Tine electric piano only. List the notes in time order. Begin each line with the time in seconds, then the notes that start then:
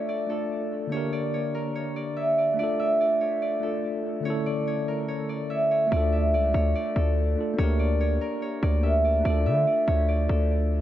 Already playing: A3 D4 F4 A4
0.27 A3 D4 F4
0.32 A4
0.87 D3 A#3
0.92 D4 G4
0.97 A#4
2.54 A3 D4
2.60 F4 A4
3.60 A3 D4 F4
3.65 A4
4.20 D3 A3
4.25 C#4 E4
4.30 A4
5.87 A3 D4
5.93 F4 A4
7.36 A3 D4 F4
7.40 A4
7.54 A#3 D4
7.60 G4 A#4
8.81 A#3 D4 G4
8.86 A#4
9.20 A3 D4
9.27 F4 A4